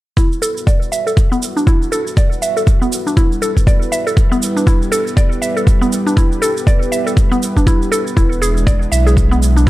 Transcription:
0.17 G3 B3 E4 F#4 B4, kick, shaker
0.32 shaker
0.42 A4, shaker
0.57 shaker
0.67 D5, kick, shaker
0.82 shaker
0.92 E5, shaker
1.07 A4, shaker
1.17 kick, shaker
1.32 B3, shaker
1.42 shaker
1.57 D4, shaker
1.67 E4, kick, shaker
1.82 shaker
1.92 A4, shaker
2.07 shaker
2.17 D5, kick, shaker
2.32 shaker
2.42 E5, shaker
2.57 A4, shaker
2.67 kick, shaker
2.82 B3, shaker
2.92 shaker
3.07 D4, shaker
3.17 E4, kick, shaker
3.32 shaker
3.42 A4, shaker
3.57 kick, shaker
3.67 D5, kick, shaker
3.82 shaker
3.92 E5, shaker
4.07 A4, shaker
4.17 G4, kick, shaker
4.32 B3, shaker
4.42 shaker
4.57 D4, shaker
4.67 E4, kick, shaker
4.82 shaker
4.92 A4, shaker
5.07 shaker
5.17 D5, kick, shaker
5.32 shaker
5.42 E5, shaker
5.57 A4, shaker
5.67 kick, shaker
5.81 B3, shaker
5.92 shaker
6.07 D4, shaker
6.17 E4, kick, shaker
6.32 shaker
6.42 A4, shaker
6.57 shaker
6.67 D5, kick, shaker
6.82 shaker
6.92 E5, shaker
7.07 A4, shaker
7.17 kick, shaker
7.32 B3, shaker
7.43 shaker
7.57 D4, kick, shaker
7.67 E4, kick, shaker
7.82 shaker
7.92 A4, shaker
8.07 shaker
8.17 E1 G#3 D4 E4, kick, shaker
8.32 shaker
8.42 G#4, shaker
8.57 shaker
8.67 D5, kick, shaker
8.82 shaker
8.92 B1 E5, shaker
9.06 G#4, shaker
9.17 kick, shaker
9.31 B3, shaker
9.42 shaker
9.56 D4, shaker
9.67 E4

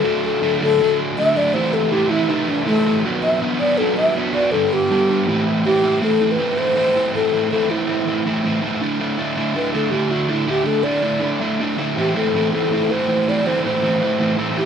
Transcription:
Already playing: A4
0.04 D3 F#3 A3 D4
0.25 A4
0.42 D3 F#3 A3 D4
0.61 D3 F#3 A3 D4 A4
0.81 D3 F#3 A3 D4
1.18 D3 F#3 A3 D4 E5
1.35 D3 F#3 A3 D4 D5
1.54 C3 E3 A3 E4 C5
1.74 A4
1.91 C3 E3 A3 E4 G4
2.09 C3 E3 A3 E4
2.29 C3 E3 A3 D#4 E4
2.48 D4
2.66 C3 E3 A3 E4
2.86 C3 E3 A3 E4
3.05 B2 F#3 B3 D4
3.22 E5
3.41 B2 F#3 B3 D4
3.60 B2 F#3 B3 D4 D5
3.78 B2 F#3 B3 D4 A4
3.97 E5
4.17 B2 F#3 B3 D4
4.33 B2 F#3 B3 D4 D5
4.52 G2 D3 G3 B3 D4 A4
4.73 G4
4.90 G2 D3 G3 B3 D4
5.09 G2 D3 G3 B3 D4
5.27 A2 E3 A3 C4 E4
5.65 A2 E3 A3 C4 E4 G4
5.83 A2 E3 A3 C4 E4
6.01 A2 E3 A3 C4 E4 A4
6.20 A2 E3 A3 C4 E4
6.31 B4
6.37 A2 E3 A3 C4 E4
6.56 A2 E3 A3 C4 E4 C5
6.76 A2 E3 A3 C4 E4
6.95 A2 E3 A3 C4 E4
7.14 A2 E3 A3 C4 E4 A4
7.33 A2 E3 A3 C4 E4
7.51 A2 E3 A3 C4 E4 A4
7.68 A2 E3 A3 C4 E4
7.86 A2 E3 A3 C4 E4
8.06 A2 E3 A3 C4 E4
8.26 A2 E3 A3 C4 E4
8.44 A2 E3 A3 C4 E4
8.62 A2 E3 A3 C4 E4
8.81 D3 A3 D4 E4
8.99 D3 A3 D4 E4
9.18 D3 A3 D4 E4
9.36 D3 A3 D4 E4
9.55 D3 A3 D4 E4 B4
9.74 D3 A3 D4 E4 A4
9.90 D3 A3 D4 E4 G4
10.09 D3 A3 D4 E4 F#4
10.28 D3 A3 D4 E4
10.46 D3 A3 D4 E4 G4
10.64 D3 A3 D4 E4 A4
10.83 D3 A3 D4 E4 D5
11.02 D3 A3 D4 E4
11.21 D3 A3 D4 E4
11.40 D3 A3 D4 E4
11.60 D3 A3 D4 E4
11.77 D3 A3 D4 E4
11.97 A2 E3 A3 C4 E4 G4
12.15 A2 E3 A3 C4 E4 A4
12.34 A2 E3 A3 C4 E4
12.53 A2 E3 A3 C4 E4 A4
12.71 A2 E3 A3 C4 E4
12.90 A2 E3 A3 C4 E4 C5
13.08 A2 E3 A3 C4 E4
13.28 A2 E3 A3 C4 E4 D5
13.46 A2 E3 A3 C4 E4 C5
13.64 A2 E3 A3 C4 E4 C5
13.83 A2 E3 A3 C4 E4
14.01 A2 E3 A3 C4 E4
14.19 A2 E3 A3 C4 E4
14.38 A2 E3 A3 C4 E4
14.57 A2 E3 A3 C4 E4 G4

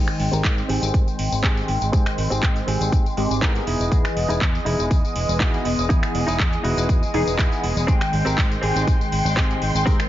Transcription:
Already playing: D#3 G#3 C4 G5 C6
0.08 finger snap, closed hi-hat, tambourine
0.19 G#1, muted clean electric guitar stroke, open hi-hat
0.32 G#1 C4 G4 A#4, closed hi-hat, tambourine
0.44 G#2, kick, clap, closed hi-hat, tambourine
0.56 muted clean electric guitar stroke, tambourine
0.68 G#1 C4 G4 G#4, open hi-hat
0.82 G#1, closed hi-hat, tambourine
0.94 kick, closed hi-hat, tambourine
1.07 muted fingered electric bass stroke, tambourine
1.19 G#1, open hi-hat
1.32 G#1, tambourine
1.43 D#3 G#3 C4 G4 G#4, kick, clap, closed hi-hat, tambourine
1.57 tambourine
1.68 G#1, open hi-hat
1.81 G#1, closed hi-hat, tambourine
1.92 G#2 D#3 G#3 C4 G4 G#4 G5, kick, closed hi-hat, tambourine
2.06 finger snap, closed hi-hat, tambourine
2.17 G#1, muted clean electric guitar stroke, open hi-hat
2.30 G#1 C4 G4 G#4, closed hi-hat, tambourine
2.43 G#2, kick, clap, closed hi-hat, tambourine
2.55 muted clean electric guitar stroke, closed hi-hat, tambourine
2.67 G#1 C4 G4 G#4, open hi-hat
2.80 G#1, closed hi-hat, tambourine
2.92 G#2, kick, closed hi-hat, tambourine
3.06 tambourine
3.17 G#1 D#3 G#3 C4 G4, open hi-hat
3.30 G#1, closed hi-hat, tambourine
3.41 G#2 E3 B3 C4 D#4 G4 G#4 A#4, kick, clap, closed hi-hat, tambourine
3.55 closed hi-hat, tambourine
3.66 E1 D#4 E4 G#4 D#6, open hi-hat
3.80 E1, tambourine
3.91 E2 E3 B3 G#4 D#5, kick, closed hi-hat, tambourine
4.05 finger snap, closed hi-hat, tambourine
4.16 E1, muted clean electric guitar stroke, open hi-hat
4.29 E1 D#4 E4 G#4, closed hi-hat, tambourine
4.41 E2, kick, clap, closed hi-hat, tambourine
4.53 muted clean electric guitar stroke, tambourine
4.65 E1 D#4 E4 G#4, open hi-hat
4.79 E1, closed hi-hat, tambourine
4.91 kick, closed hi-hat, tambourine
5.05 tambourine
5.16 E1, open hi-hat
5.29 E1, tambourine
5.40 E2 E3 B3 D#4 E4 F#4 G#4 D#5, kick, clap, closed hi-hat, tambourine
5.54 tambourine
5.65 E1, open hi-hat
5.78 E1, tambourine
5.89 E2 E3 B3 D#4 E4 G#4 D#5, kick, closed hi-hat, tambourine
6.03 finger snap, closed hi-hat, tambourine
6.14 E1, muted clean electric guitar stroke, open hi-hat
6.27 E1 D#4 E4 G#4, closed hi-hat, tambourine
6.40 E2, kick, clap, closed hi-hat, tambourine
6.52 muted clean electric guitar stroke, closed hi-hat, tambourine
6.63 E1 D#4 E4 F#4, open hi-hat
6.77 E1, closed hi-hat, tambourine
6.89 E2, kick, closed hi-hat, tambourine
7.02 muted fingered electric bass stroke, tambourine
7.14 E1 E3 B3 D#4 G#4, open hi-hat
7.27 E1, tambourine
7.38 E2 E3 B3 D#4 E4 G#4 D#5, kick, clap, closed hi-hat, tambourine
7.52 closed hi-hat, tambourine
7.63 E1, open hi-hat
7.76 E1, closed hi-hat, tambourine
7.87 G#2 D#3 G#3 C4 G4 G#4 G5 C6, kick, closed hi-hat, tambourine
8.01 finger snap, closed hi-hat, tambourine
8.12 G#1, muted clean electric guitar stroke, open hi-hat
8.25 G#1 C4 G4 A#4, closed hi-hat, tambourine
8.38 G#2, kick, clap, closed hi-hat, tambourine
8.50 muted clean electric guitar stroke, tambourine
8.61 G#1 C4 G4 G#4, open hi-hat
8.76 G#1, closed hi-hat, tambourine
8.88 kick, closed hi-hat, tambourine
9.00 muted fingered electric bass stroke, tambourine
9.12 G#1, open hi-hat
9.25 G#1, tambourine
9.36 G#2 D#3 G#3 C4 G4 G#4 G5, kick, clap, closed hi-hat, tambourine
9.51 tambourine
9.62 G#1, open hi-hat
9.75 G#1, tambourine
9.86 G#2 D#3 G#3 C4 G4 A#4 G5, kick, closed hi-hat, tambourine
10.00 finger snap, closed hi-hat, tambourine

